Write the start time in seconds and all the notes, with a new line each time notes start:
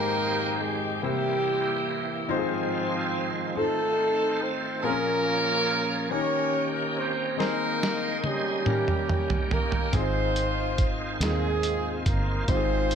Already playing: G#2 D#3 G#3 A#3 C4 D#4 G4 A#4 C5 G5
0.61 G#3 G#4
1.02 C3 E3 G3 A#3 C4 E4 G4 A#4 C5
2.28 G#2 D#3 F3 G#3 C4 D#4 F4 G4 C5
2.37 G#4
3.55 D#3 A3 C4 D#4 F4 A4 C5
4.42 C4 C5
4.83 A#2 F3 A#3 C4 C#4 F4 G#4 A#4
4.89 C#4
6.10 D#3 A#3 C#4 D#4 F#4 G4 A#4 C#5
6.18 G4
6.97 C4 C5
7.37 D#3 G#3 A#3 C4 D#4 G#4 A#4 C5, snare
7.83 snare
8.24 G3 A#3 C#4 G4, high tom
8.64 D#3 A#3 C#4 D#4 F4 G4 A#4, mid tom
8.74 G4
8.88 mid tom
9.09 mid tom
9.30 floor tom
9.51 A#3 A#4, floor tom
9.72 floor tom
9.92 G#1 G#2 D#3 G#3 C4 D#4 F4 G#4 C5, kick, closed hi-hat
10.01 F4
10.36 closed hi-hat
10.78 kick, closed hi-hat
11.20 D#2 G#3 A#3 C4 D#4 F4 G#4, snare, closed hi-hat
11.27 C4
11.63 closed hi-hat
12.06 G1 A#3 A#4, kick, closed hi-hat
12.48 G#1 G#2 D#3 G3 C4 D#4 F4 G4 C5, kick, closed hi-hat
12.56 G#3 G#4
12.91 closed hi-hat